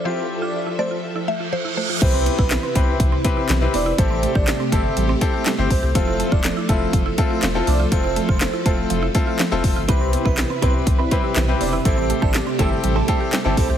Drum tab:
CC |----------------|x---------------|----------------|----------------|
HH |----------------|x-x-x-x-x-x-x-o-|x-x-x-x-x-x-x-o-|x-x-x-x-x-x-x-o-|
CP |----------------|----x-------x---|----x-------x---|----x-------x---|
SD |----------------|----o-------o---|----o-------o---|----o-------o---|
BD |----------------|o--o--o-o-o-----|o--o--o---o---o-|o--o--o-o-o-----|

CC |----------------|----------------|----------------|
HH |x-x-x-x-x-x-x-o-|x-x-x-x-x-x-x-o-|x-x-x-x-x-x-x-o-|
CP |----x-------x---|----x-------x---|----x-------x---|
SD |----o-------o---|----o-------o---|----o-------o---|
BD |o--o--o---o---o-|o--o--o-o-o-----|o--o--o---o---o-|